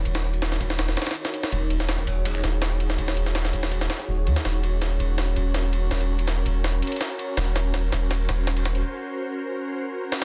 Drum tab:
RD |x-x---x-x---x---x---xxxxx---x---|x---x---x---x---x---x---x---x---|x---x---x---x---x---x-------x---|x---x---x---x---x---x---x---x---|
SD |--o-----o-o---o-o-o-oooo--o---o-|------o-o-----------o---o-----o-|--o---o-o-o---o---o-o---------o-|o-------o-------o-------o-------|
BD |------------o-------------------|o---------o-----o-o-------------|o-----------o---o-----o---------|--------------------------------|

RD |x-x---x-x---x---x---xxxxx---x---|x---x---x---x---x---x---x-x---x-|--------------------------------|
SD |o-------o-------o-------o-------|o---o---o---o---o---o---o---o---|----------------------------o---|
BD |--------------------------------|--------------------------------|--------------------------------|